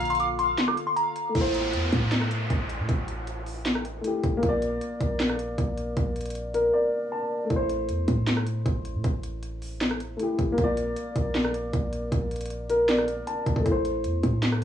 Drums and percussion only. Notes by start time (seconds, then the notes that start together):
0.01 closed hi-hat
0.05 closed hi-hat
0.10 closed hi-hat
0.15 closed hi-hat
0.20 closed hi-hat
0.39 closed hi-hat
0.58 snare, clap, closed hi-hat
0.68 cross-stick
0.77 closed hi-hat
0.97 closed hi-hat
1.16 closed hi-hat
1.35 kick, closed hi-hat
1.54 closed hi-hat
1.74 closed hi-hat
1.93 kick, closed hi-hat
2.12 snare, clap, closed hi-hat
2.22 cross-stick
2.31 closed hi-hat
2.50 kick, closed hi-hat
2.70 closed hi-hat
2.89 kick, closed hi-hat
3.08 closed hi-hat
3.27 closed hi-hat
3.47 open hi-hat
3.66 snare, clap, closed hi-hat
3.75 cross-stick
3.85 closed hi-hat
4.04 closed hi-hat
4.23 kick, closed hi-hat
4.43 kick, closed hi-hat
4.62 closed hi-hat
4.81 closed hi-hat
5.00 kick, closed hi-hat
5.20 snare, clap, closed hi-hat
5.29 cross-stick
5.39 closed hi-hat
5.58 kick, closed hi-hat
5.77 closed hi-hat
5.97 kick, closed hi-hat
6.16 closed hi-hat
6.21 closed hi-hat
6.26 closed hi-hat
6.30 closed hi-hat
6.35 closed hi-hat
6.54 closed hi-hat
7.50 kick, closed hi-hat
7.70 closed hi-hat
7.89 closed hi-hat
8.08 kick, closed hi-hat
8.27 snare, clap, closed hi-hat
8.37 cross-stick
8.47 closed hi-hat
8.66 kick, closed hi-hat
8.85 closed hi-hat
9.04 kick, closed hi-hat
9.23 closed hi-hat
9.43 closed hi-hat
9.62 open hi-hat
9.81 snare, clap, closed hi-hat
9.91 cross-stick
10.00 closed hi-hat
10.20 closed hi-hat
10.39 kick, closed hi-hat
10.58 kick, closed hi-hat
10.77 closed hi-hat
10.97 closed hi-hat
11.16 kick, closed hi-hat
11.35 snare, clap, closed hi-hat
11.45 cross-stick
11.54 closed hi-hat
11.73 kick, closed hi-hat
11.93 closed hi-hat
12.12 kick, closed hi-hat
12.31 closed hi-hat
12.36 closed hi-hat
12.41 closed hi-hat
12.46 closed hi-hat
12.50 closed hi-hat
12.70 closed hi-hat
12.89 snare, clap, closed hi-hat
12.98 cross-stick
13.08 closed hi-hat
13.27 closed hi-hat
13.46 kick, closed hi-hat
13.56 kick
13.66 kick, closed hi-hat
13.85 closed hi-hat
14.04 closed hi-hat
14.23 kick, closed hi-hat
14.43 snare, clap, closed hi-hat
14.52 cross-stick